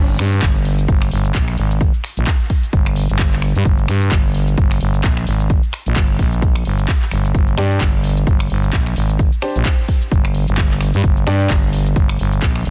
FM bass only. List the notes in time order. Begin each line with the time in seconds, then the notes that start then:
Already playing: G1
0.19 G2
0.42 G1
0.88 G1
1.11 G1
1.58 G#1
2.17 A#1
2.73 G1
3.09 G1
3.56 G2
3.65 G1
3.89 G2
4.11 G1
4.58 G1
4.81 G1
5.04 A#1
5.27 G#1
5.86 A#1
6.19 A#1
6.65 G1
7.12 G1
7.35 G1
7.58 G2
7.81 G1
8.27 G1
8.50 G1
8.96 G#1
9.56 A#1
10.12 G1
10.48 G1
10.94 G2
11.04 G1
11.27 G2
11.50 G1
11.96 G1
12.19 G1
12.42 A#1
12.65 G#1